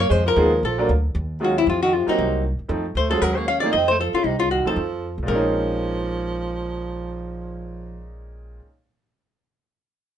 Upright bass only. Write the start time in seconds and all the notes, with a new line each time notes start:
0.10 F2
0.36 D#2
0.63 A#1
0.89 D2
1.15 D#2
1.67 F2
2.07 muted upright bass stroke
2.18 C2
2.59 muted upright bass stroke
2.69 F2
2.95 D2
3.21 D#2
3.73 F2
4.13 muted upright bass stroke
4.24 C2
4.66 muted upright bass stroke
4.76 F2
5.18 C2
5.28 A#1